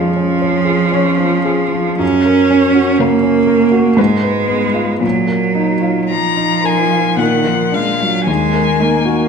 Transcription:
Already playing: F2 F3 C#4 G#4 C#5
0.16 C#4
0.42 C#5
0.65 G#4
0.92 C#4 C#5
1.18 F3
1.45 G#4
1.72 F3
1.99 F#2 C#4
2.25 A#4
2.51 C#4
2.74 F#4
2.99 C#3 A#3 A#4
3.23 C#4
3.47 A#4
3.72 F#4
3.97 G#2 G#3 B4
4.23 B4
4.49 B3
4.73 F4
5.01 A#2 F#3
5.27 A#4
5.55 D#4
5.82 F4
6.10 F3 A#5
6.37 D#4
6.64 A#4 G#5
6.91 F4
7.17 A#2 D#3 F#5
7.44 F3 A#4
7.72 G#3 D4 F5
8.00 F#3 F4
8.27 D#2 G#3 G#5
8.54 A#4
8.80 A#3 D#4
9.05 F#4

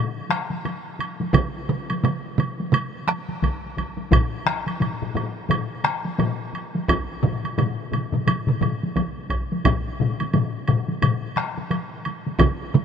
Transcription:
0.29 taiko rim, taiko high, high woodblock
0.50 taiko high
0.65 taiko high, high woodblock
0.99 taiko high, high woodblock
1.20 taiko high
1.33 taiko, taiko mid, taiko high, high woodblock
1.69 taiko mid, taiko high
1.90 taiko high, high woodblock
2.04 taiko mid, taiko high, high woodblock
2.38 taiko mid, taiko high, high woodblock
2.60 taiko high
2.73 taiko mid, taiko high, high woodblock
3.07 taiko rim, taiko high, high woodblock
3.29 taiko high
3.42 taiko, taiko high, high woodblock
3.77 taiko, taiko high, high woodblock
3.97 taiko high
4.11 taiko, taiko low-mid, taiko high, high woodblock
4.46 taiko rim, taiko high
4.67 taiko high, high woodblock
4.80 taiko low-mid, taiko high, high woodblock
5.02 taiko low-mid
5.14 taiko low-mid, taiko high, high woodblock
5.49 taiko low-mid, taiko high, high woodblock
5.84 taiko rim, taiko high, high woodblock
6.05 taiko high
6.18 taiko low-mid, taiko high, high woodblock
6.53 taiko high, high woodblock
6.75 taiko high
6.88 taiko, taiko high, high woodblock
7.23 taiko low-mid, taiko mid, taiko high
7.44 taiko high, high woodblock
7.58 taiko low-mid, taiko mid, taiko high, high woodblock
7.92 taiko low-mid, taiko mid, taiko high, high woodblock
8.12 taiko low-mid, taiko mid, taiko high
8.27 taiko low-mid, taiko mid, taiko high, high woodblock
8.47 taiko low-mid, taiko mid
8.61 taiko low-mid, taiko mid, taiko high, high woodblock
8.83 taiko high
8.96 taiko, taiko high, high woodblock
9.30 taiko, high woodblock
9.52 taiko high
9.65 taiko, taiko low-mid, taiko high, high woodblock
10.00 taiko low-mid
10.20 taiko high, high woodblock
10.34 taiko low-mid, taiko high, high woodblock
10.68 taiko low-mid, taiko high, high woodblock
10.88 taiko high
11.02 taiko low-mid, taiko high, high woodblock
11.36 taiko rim, taiko high, high woodblock
11.57 taiko high
11.71 taiko high, high woodblock
12.05 taiko high, high woodblock
12.27 taiko high
12.39 taiko, taiko mid, taiko high, high woodblock
12.74 taiko mid, taiko high

